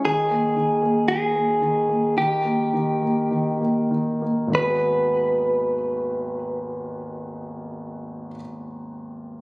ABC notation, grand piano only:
X:1
M:4/4
L:1/16
Q:1/4=49
K:G#m
V:1 name="Grand piano" clef=bass
D, A, D, A, D, A, D, A, D, A, D, A, D, A, D, A, | [G,,,D,,D,B,FG]16 |]